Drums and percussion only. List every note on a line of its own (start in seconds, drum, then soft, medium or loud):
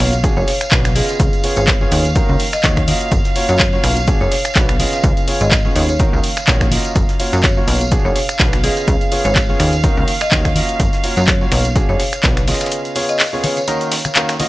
0.00 finger snap medium
0.00 snare medium
0.00 open hi-hat loud
0.00 shaker medium
0.13 closed hi-hat medium
0.13 tambourine medium
0.24 kick loud
0.24 closed hi-hat medium
0.24 tambourine medium
0.24 shaker medium
0.37 tambourine soft
0.48 snare medium
0.48 open hi-hat loud
0.48 shaker medium
0.61 finger snap medium
0.61 closed hi-hat medium
0.61 closed hi-hat soft
0.61 tambourine medium
0.71 kick loud
0.71 snare loud
0.71 clap loud
0.71 closed hi-hat medium
0.71 tambourine medium
0.71 shaker medium
0.85 finger snap medium
0.85 closed hi-hat soft
0.85 tambourine soft
0.95 open hi-hat loud
0.95 high conga medium
0.95 shaker medium
1.09 snare medium
1.09 closed hi-hat medium
1.09 tambourine medium
1.20 kick loud
1.20 closed hi-hat medium
1.20 shaker medium
1.33 closed hi-hat soft
1.33 tambourine soft
1.44 open hi-hat loud
1.44 shaker medium
1.56 closed hi-hat medium
1.56 tambourine medium
1.67 kick loud
1.67 snare loud
1.67 clap loud
1.67 closed hi-hat medium
1.67 tambourine medium
1.67 shaker medium
1.81 tambourine soft
1.92 open hi-hat loud
1.92 shaker medium
2.05 closed hi-hat medium
2.05 tambourine medium
2.15 kick loud
2.15 closed hi-hat medium
2.15 tambourine medium
2.15 shaker medium
2.29 tambourine soft
2.40 open hi-hat loud
2.40 shaker medium
2.53 finger snap medium
2.53 snare soft
2.53 closed hi-hat medium
2.53 tambourine medium
2.63 kick loud
2.63 snare loud
2.63 clap loud
2.63 closed hi-hat medium
2.63 tambourine medium
2.63 shaker medium
2.77 finger snap medium
2.77 kick medium
2.77 closed hi-hat soft
2.77 tambourine soft
2.88 open hi-hat loud
2.88 high conga medium
2.88 shaker medium
3.01 closed hi-hat medium
3.01 tambourine medium
3.12 kick loud
3.12 closed hi-hat medium
3.12 tambourine medium
3.12 shaker medium
3.25 snare soft
3.25 closed hi-hat soft
3.25 tambourine soft
3.36 open hi-hat loud
3.36 shaker medium
3.49 snare medium
3.49 closed hi-hat medium
3.49 tambourine medium
3.59 kick loud
3.59 snare loud
3.59 clap loud
3.59 closed hi-hat medium
3.59 tambourine medium
3.59 shaker medium
3.73 tambourine soft
3.84 finger snap medium
3.84 snare medium
3.84 open hi-hat loud
3.84 shaker medium
3.96 closed hi-hat medium
3.96 tambourine medium
4.07 kick loud
4.07 closed hi-hat medium
4.07 tambourine medium
4.07 shaker medium
4.21 tambourine soft
4.32 snare medium
4.32 open hi-hat loud
4.32 shaker medium
4.45 finger snap medium
4.45 closed hi-hat soft
4.45 closed hi-hat medium
4.45 tambourine medium
4.55 kick loud
4.55 snare loud
4.55 clap loud
4.55 closed hi-hat medium
4.55 tambourine medium
4.55 shaker medium
4.69 finger snap medium
4.69 closed hi-hat soft
4.69 tambourine soft
4.79 open hi-hat loud
4.79 high conga medium
4.79 shaker medium
4.93 snare medium
4.93 closed hi-hat medium
4.93 tambourine medium
5.04 kick loud
5.04 closed hi-hat medium
5.04 tambourine medium
5.04 shaker medium
5.17 closed hi-hat soft
5.17 tambourine soft
5.28 open hi-hat loud
5.28 shaker medium
5.40 closed hi-hat medium
5.40 tambourine medium
5.51 kick loud
5.51 snare loud
5.51 clap loud
5.51 closed hi-hat medium
5.51 tambourine medium
5.51 shaker medium
5.65 tambourine soft
5.76 open hi-hat loud
5.76 shaker medium
5.89 closed hi-hat medium
5.89 tambourine medium
6.00 kick loud
6.00 closed hi-hat medium
6.00 tambourine medium
6.00 shaker medium
6.13 tambourine soft
6.24 open hi-hat loud
6.24 shaker medium
6.37 finger snap medium
6.37 snare soft
6.37 closed hi-hat medium
6.37 tambourine medium
6.47 kick loud
6.47 snare loud
6.47 clap loud
6.47 closed hi-hat medium
6.47 tambourine medium
6.47 shaker medium
6.61 finger snap medium
6.61 kick medium
6.61 closed hi-hat soft
6.61 tambourine soft
6.71 open hi-hat loud
6.71 high conga medium
6.71 shaker medium
6.85 closed hi-hat soft
6.85 tambourine medium
6.96 kick loud
6.96 closed hi-hat medium
6.96 tambourine medium
6.96 shaker loud
7.09 snare soft
7.09 closed hi-hat soft
7.09 tambourine soft
7.20 open hi-hat loud
7.20 shaker medium
7.33 snare medium
7.33 closed hi-hat medium
7.33 tambourine medium
7.43 kick loud
7.43 snare loud
7.43 clap loud
7.43 closed hi-hat medium
7.43 tambourine medium
7.43 shaker medium
7.57 tambourine soft
7.68 open hi-hat loud
7.68 shaker medium
7.81 closed hi-hat medium
7.81 tambourine medium
7.92 kick loud
7.92 closed hi-hat medium
7.92 tambourine medium
7.92 shaker medium
8.06 tambourine soft
8.16 snare medium
8.16 open hi-hat loud
8.16 shaker medium
8.29 finger snap medium
8.29 closed hi-hat medium
8.29 closed hi-hat soft
8.29 tambourine medium
8.39 kick loud
8.39 snare loud
8.39 clap loud
8.39 closed hi-hat medium
8.39 tambourine medium
8.39 shaker medium
8.53 finger snap medium
8.53 closed hi-hat soft
8.53 tambourine soft
8.63 open hi-hat loud
8.63 high conga medium
8.63 shaker medium
8.77 snare medium
8.77 closed hi-hat medium
8.77 tambourine medium
8.88 kick loud
8.88 closed hi-hat medium
8.88 tambourine medium
8.88 shaker medium
9.01 closed hi-hat soft
9.01 tambourine soft
9.12 open hi-hat loud
9.12 shaker medium
9.25 closed hi-hat medium
9.25 tambourine medium
9.36 kick loud
9.36 snare loud
9.36 clap loud
9.36 closed hi-hat medium
9.36 tambourine medium
9.36 shaker medium
9.49 tambourine soft
9.60 finger snap medium
9.60 open hi-hat loud
9.60 shaker medium
9.73 closed hi-hat medium
9.73 tambourine medium
9.84 kick loud
9.84 closed hi-hat medium
9.84 tambourine medium
9.84 shaker medium
9.97 tambourine soft
10.08 open hi-hat loud
10.08 shaker medium
10.21 finger snap medium
10.21 snare soft
10.21 closed hi-hat medium
10.21 tambourine medium
10.31 kick loud
10.31 snare loud
10.31 clap loud
10.31 closed hi-hat medium
10.31 tambourine medium
10.31 shaker medium
10.45 finger snap medium
10.45 kick medium
10.45 closed hi-hat soft
10.45 tambourine soft
10.55 open hi-hat loud
10.55 high conga medium
10.55 shaker medium
10.69 closed hi-hat medium
10.69 tambourine medium
10.80 kick loud
10.80 closed hi-hat medium
10.80 tambourine medium
10.80 shaker medium
10.93 snare soft
10.93 closed hi-hat soft
10.93 tambourine soft
11.04 open hi-hat loud
11.04 shaker medium
11.17 snare medium
11.17 closed hi-hat medium
11.17 tambourine medium
11.27 kick loud
11.27 snare loud
11.27 clap loud
11.27 closed hi-hat medium
11.27 shaker medium
11.41 tambourine soft
11.52 finger snap medium
11.52 snare medium
11.52 open hi-hat loud
11.52 shaker medium
11.65 closed hi-hat medium
11.65 tambourine medium
11.76 kick loud
11.76 closed hi-hat medium
11.76 tambourine medium
11.76 shaker medium
11.89 tambourine soft
12.00 snare medium
12.00 open hi-hat loud
12.00 shaker medium
12.13 finger snap medium
12.13 closed hi-hat medium
12.13 closed hi-hat soft
12.13 tambourine medium
12.23 kick loud
12.23 snare loud
12.23 clap loud
12.23 closed hi-hat medium
12.23 tambourine medium
12.23 shaker medium
12.37 finger snap medium
12.37 closed hi-hat soft
12.37 tambourine soft
12.48 snare medium
12.48 open hi-hat loud
12.48 high conga medium
12.48 shaker medium
12.54 snare medium
12.54 shaker medium
12.61 snare medium
12.61 closed hi-hat medium
12.61 tambourine medium
12.61 shaker medium
12.66 snare medium
12.66 shaker medium
12.71 closed hi-hat medium
12.71 tambourine medium
12.71 shaker medium
12.85 closed hi-hat soft
12.85 tambourine soft
12.96 open hi-hat loud
12.96 shaker medium
13.09 closed hi-hat medium
13.09 tambourine medium
13.19 snare loud
13.19 clap loud
13.19 open hi-hat medium
13.19 tambourine medium
13.19 shaker medium
13.33 tambourine soft
13.44 open hi-hat loud
13.44 high conga medium
13.44 shaker medium
13.57 closed hi-hat medium
13.57 tambourine medium
13.67 closed hi-hat medium
13.67 tambourine medium
13.67 shaker medium
13.81 closed hi-hat soft
13.81 tambourine soft
13.92 snare loud
13.92 open hi-hat loud
13.92 shaker medium
14.05 finger snap medium
14.05 closed hi-hat medium
14.05 tambourine medium
14.05 high conga medium
14.15 clap loud
14.15 closed hi-hat medium
14.15 tambourine medium
14.15 shaker medium
14.29 finger snap medium
14.29 snare loud
14.29 closed hi-hat soft
14.29 tambourine soft
14.29 shaker medium
14.40 open hi-hat loud
14.40 high conga medium
14.40 shaker medium